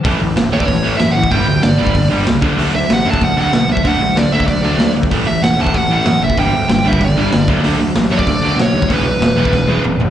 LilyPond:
<<
  \new Staff \with { instrumentName = "Lead electric guitar" } { \time 4/4 \key d \lydian \tempo 4 = 190 r4. cis''16 d''16 cis''4 e''8 fis''8 | g''4 d''4. r4. | r8 e''8 fis''8 a''8 fis''8 fis''4 e''8 | fis''4 d''8 e''8 d''4. r8 |
r8 e''8 fis''8 a''8 fis''8 fis''4 e''8 | g''4 g''8 e''8 d''4. r8 | r4. cis''16 d''4~ d''16 cis''4 | b'2. r4 | }
  \new Staff \with { instrumentName = "Overdriven electric guitar" } { \clef bass \time 4/4 \key d \lydian <a, e a>8 <a, e>8 <a, e>8 <a, e a>8 <a, e>8 <a, e a>8 <a, e>8 <a, e>8 | <g, d g>8 <g, d>8 <g, d>8 <g, d g>8 <g, d>8 <g, d g>8 <g, d>8 <d fis a>8 | <d fis a>8 <d fis>8 <d fis>8 <d fis a>8 <d fis>8 <d fis a>8 <d fis>8 <d fis>8 | <d fis a>8 <d fis>8 <d fis>8 <d fis a>8 <d fis>8 <d fis a>8 <d fis>8 <d fis>8 |
<a, e a>8 <a, e>8 <a, e>8 <a, e a>8 <a, e>8 <a, e a>8 <a, e>8 <a, e>8 | <g, d g>8 <g, d>8 <g, d>8 <g, d g>8 <g, d>8 <g, d g>8 <g, d>8 <d fis a>8 | <d fis a>8 <d fis>8 <d fis>8 <d fis a>8 <d fis>8 <d fis a>8 <d fis>8 <d fis>8 | <e gis b>8 <e gis>8 <e gis>8 <e gis b>8 <e gis>8 <e gis b>8 <e gis>8 <e gis>8 | }
  \new Staff \with { instrumentName = "Overdriven electric guitar" } { \clef bass \time 4/4 \key d \lydian <a, e a>8 <a, e>8 <a, e>8 <a, e a>8 <a, e>8 <a, e a>8 <a, e>8 <a, e>8 | <g, d g>8 <g, d>8 <g, d>8 <g, d g>8 <g, d>8 <g, d g>8 <g, d>8 <d a d'>8 | <d a d'>8 <d a>8 <d a>8 <d a d'>8 <d a>8 <d a d'>8 <d a>8 <d a>8 | <d a d'>8 <d a>8 <d a>8 <d a d'>8 <d a>8 <d a d'>8 <d a>8 <d a>8 |
<a, e a>8 <a, e>8 <a, e>8 <a, e a>8 <a, e>8 <a, e a>8 <a, e>8 <a, e>8 | <g, d g>8 <g, d>8 <g, d>8 <g, d g>8 <g, d>8 <g, d g>8 <g, d>8 <d a d'>8 | <d a d'>8 <d a>8 <d a>8 <d a d'>8 <d a>8 <d a d'>8 <d a>8 <d a>8 | <e, b, e>8 <e, b,>8 <e, b,>8 <e, b, e>8 <e, b,>8 <e, b, e>8 <e, b,>8 <e, b,>8 | }
  \new Staff \with { instrumentName = "Picked electric bass" } { \clef bass \time 4/4 \key d \lydian a,,8 a,,8 e,,8 d,8 a,,8 a,,8 fis,8 a,,8 | g,,8 d,8 g,,8 g,,8 g,,8 g,,8 cis,8 d,8 | d,8 d,8 a,,8 fis,8 d,8 d,8 b,8 d,8 | d,8 a,,8 d,8 d,8 d,8 d,8 d,8 d,8 |
a,,8 a,,8 e,,8 d,8 a,,8 a,,8 fis,8 fis,,8 | g,,8 d,8 g,,8 g,,8 g,,8 g,,8 g,,8 d,8 | d,8 d,8 a,,8 fis,8 d,8 d,8 b,8 dis,8 | e,,8 b,,8 e,,8 e,,8 e,,8 e,,8 e,,8 gis,,8 | }
  \new DrumStaff \with { instrumentName = "Drums" } \drummode { \time 4/4 <hho bd>4 <hho sn>8. bd16 <hho bd>4 <hho sn>8. bd16 | <hho bd>4 <hho sn>8. bd16 <hho bd>4 <hho sn>8 bd8 | hho4 <hho sn>8. bd16 <hho bd>4 <hho sn>8. bd16 | <hho bd>4 <hho sn>8. bd16 <hho bd>4 <hho sn>8. bd16 |
<hho bd>4 <hho sn>8. bd16 <hho bd>4 <hho sn>8. bd16 | <hho bd>4 <hho sn>8. bd16 <hho bd>4 <hho sn>8 bd8 | hho4 <hho sn>8. bd16 <hho bd>4 <hho sn>8. bd16 | <hho bd>4 <hho sn>8. bd16 <bd sn>8 tommh8 toml8 tomfh8 | }
>>